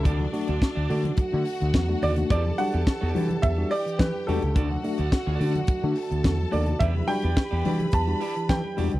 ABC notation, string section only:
X:1
M:4/4
L:1/8
Q:1/4=107
K:Em
V:1 name="String section"
[Dd]4 [Ff]4 | [Aa]4- [Aa] [Gg]3 | [Ff]4- [Ff] [Aa]3 | [Bb]8 |]